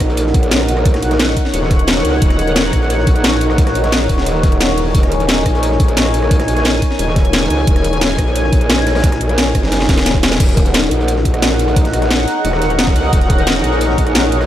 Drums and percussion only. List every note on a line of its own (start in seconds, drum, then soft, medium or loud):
0.00 kick medium
0.00 cross-stick soft
0.00 closed hi-hat medium
0.09 closed hi-hat soft
0.17 closed hi-hat medium
0.17 closed hi-hat loud
0.27 snare medium
0.34 kick loud
0.34 closed hi-hat medium
0.43 closed hi-hat soft
0.51 snare loud
0.51 closed hi-hat loud
0.51 closed hi-hat medium
0.60 cross-stick soft
0.68 closed hi-hat medium
0.76 cross-stick soft
0.76 closed hi-hat soft
0.85 kick loud
0.85 closed hi-hat medium
0.85 closed hi-hat loud
0.94 cross-stick soft
0.94 snare medium
0.94 closed hi-hat soft
1.02 closed hi-hat medium
1.11 snare soft
1.11 closed hi-hat soft
1.20 snare loud
1.20 closed hi-hat loud
1.20 closed hi-hat medium
1.37 kick medium
1.37 closed hi-hat medium
1.45 snare soft
1.54 closed hi-hat loud
1.54 closed hi-hat medium
1.63 snare soft
1.70 kick loud
1.70 snare soft
1.70 closed hi-hat medium
1.79 closed hi-hat soft
1.87 snare loud
1.87 closed hi-hat medium
1.87 closed hi-hat loud
2.04 closed hi-hat medium
2.04 open hi-hat medium
2.22 kick loud
2.22 closed hi-hat medium
2.30 cross-stick soft
2.30 snare soft
2.30 closed hi-hat soft
2.39 closed hi-hat medium
2.47 closed hi-hat soft
2.56 snare loud
2.56 closed hi-hat loud
2.56 closed hi-hat medium
2.73 kick medium
2.73 cross-stick soft
2.73 closed hi-hat medium
2.82 closed hi-hat soft
2.90 closed hi-hat medium
2.98 snare soft
3.07 kick loud
3.07 closed hi-hat medium
3.16 closed hi-hat soft
3.24 snare loud
3.24 closed hi-hat medium
3.33 cross-stick soft
3.40 closed hi-hat medium
3.50 cross-stick soft
3.50 closed hi-hat soft
3.58 kick loud
3.58 closed hi-hat medium
3.67 cross-stick soft
3.67 snare medium
3.67 closed hi-hat soft
3.75 closed hi-hat medium
3.84 snare soft
3.84 closed hi-hat soft
3.92 snare loud
3.92 closed hi-hat medium
3.92 closed hi-hat loud
4.09 kick medium
4.09 closed hi-hat medium
4.18 snare soft
4.26 closed hi-hat medium
4.35 snare soft
4.43 kick loud
4.43 snare soft
4.43 closed hi-hat medium
4.52 closed hi-hat soft
4.60 snare loud
4.60 closed hi-hat medium
4.78 closed hi-hat medium
4.78 open hi-hat medium
4.95 kick loud
4.95 closed hi-hat medium
5.03 cross-stick soft
5.03 snare soft
5.03 closed hi-hat soft
5.12 closed hi-hat medium
5.20 closed hi-hat soft
5.28 snare loud
5.28 closed hi-hat medium
5.46 kick medium
5.46 cross-stick soft
5.46 closed hi-hat medium
5.55 closed hi-hat soft
5.63 closed hi-hat medium
5.72 snare soft
5.80 kick loud
5.80 closed hi-hat medium
5.88 closed hi-hat soft
5.97 snare loud
5.97 closed hi-hat medium
6.05 cross-stick soft
6.14 closed hi-hat medium
6.22 cross-stick soft
6.22 closed hi-hat soft
6.31 kick loud
6.31 closed hi-hat medium
6.31 closed hi-hat loud
6.39 cross-stick soft
6.39 snare medium
6.39 closed hi-hat soft
6.48 closed hi-hat medium
6.57 snare soft
6.57 closed hi-hat soft
6.64 snare loud
6.64 closed hi-hat medium
6.64 closed hi-hat loud
6.82 kick medium
6.82 closed hi-hat medium
6.91 snare soft
6.99 closed hi-hat medium
7.08 snare soft
7.16 kick loud
7.16 snare soft
7.16 closed hi-hat medium
7.25 closed hi-hat soft
7.33 snare loud
7.33 closed hi-hat medium
7.50 closed hi-hat medium
7.50 open hi-hat medium
7.67 kick loud
7.67 closed hi-hat medium
7.67 closed hi-hat loud
7.76 cross-stick soft
7.76 snare soft
7.76 closed hi-hat soft
7.84 closed hi-hat medium
7.93 closed hi-hat soft
8.01 snare loud
8.01 closed hi-hat loud
8.01 closed hi-hat medium
8.18 kick medium
8.18 cross-stick soft
8.18 closed hi-hat medium
8.27 closed hi-hat soft
8.36 closed hi-hat loud
8.36 closed hi-hat medium
8.44 snare soft
8.53 kick loud
8.53 closed hi-hat medium
8.61 closed hi-hat soft
8.69 snare loud
8.69 closed hi-hat medium
8.69 closed hi-hat loud
8.78 cross-stick soft
8.87 snare loud
8.87 closed hi-hat medium
8.95 cross-stick soft
8.95 snare medium
8.95 closed hi-hat medium
8.99 snare medium
8.99 closed hi-hat medium
9.04 kick loud
9.04 closed hi-hat loud
9.04 closed hi-hat medium
9.12 cross-stick soft
9.12 snare medium
9.12 closed hi-hat soft
9.21 closed hi-hat medium
9.29 closed hi-hat soft
9.38 snare loud
9.38 closed hi-hat loud
9.38 closed hi-hat medium
9.55 kick medium
9.55 cross-stick soft
9.55 closed hi-hat medium
9.63 snare soft
9.72 snare medium
9.72 closed hi-hat loud
9.80 snare soft
9.80 snare medium
9.89 kick loud
9.89 snare medium
9.89 snare soft
9.89 closed hi-hat medium
9.98 snare medium
9.98 closed hi-hat soft
10.06 snare medium
10.06 closed hi-hat medium
10.06 closed hi-hat loud
10.15 kick medium
10.15 closed hi-hat soft
10.23 snare loud
10.23 closed hi-hat medium
10.32 snare medium
10.40 kick loud
10.40 closed hi-hat medium
10.40 closed hi-hat loud
10.40 crash loud
10.48 snare soft
10.48 closed hi-hat soft
10.57 kick loud
10.57 closed hi-hat medium
10.66 closed hi-hat soft
10.74 snare loud
10.74 closed hi-hat medium
10.74 closed hi-hat loud
10.91 closed hi-hat medium
11.00 closed hi-hat soft
11.08 closed hi-hat medium
11.08 closed hi-hat loud
11.16 snare soft
11.25 kick medium
11.25 closed hi-hat medium
11.34 cross-stick soft
11.34 closed hi-hat soft
11.42 snare loud
11.42 closed hi-hat loud
11.42 closed hi-hat medium
11.59 closed hi-hat medium
11.68 cross-stick soft
11.68 closed hi-hat soft
11.76 kick loud
11.76 closed hi-hat loud
11.76 closed hi-hat medium
11.85 snare medium
11.85 closed hi-hat soft
11.93 cross-stick soft
11.93 closed hi-hat medium
12.02 snare soft
12.02 closed hi-hat soft
12.11 snare loud
12.11 closed hi-hat loud
12.19 cross-stick medium
12.28 closed hi-hat medium
12.45 closed hi-hat medium
12.53 cross-stick medium
12.53 snare soft
12.62 snare soft
12.62 closed hi-hat medium
12.70 closed hi-hat soft
12.79 snare loud
12.79 closed hi-hat loud
12.79 closed hi-hat medium
12.87 kick loud
12.87 cross-stick medium
12.96 closed hi-hat medium
12.96 open hi-hat medium
13.13 kick loud
13.13 closed hi-hat medium
13.21 snare soft
13.21 closed hi-hat soft
13.30 kick loud
13.30 closed hi-hat medium
13.38 closed hi-hat soft
13.47 snare loud
13.47 closed hi-hat loud
13.47 closed hi-hat medium
13.64 closed hi-hat medium
13.72 closed hi-hat soft
13.81 closed hi-hat loud
13.81 closed hi-hat medium
13.90 snare soft
13.98 kick medium
13.98 closed hi-hat medium
14.07 cross-stick soft
14.07 closed hi-hat soft
14.15 snare loud
14.15 closed hi-hat medium
14.32 closed hi-hat medium
14.41 cross-stick soft
14.41 closed hi-hat soft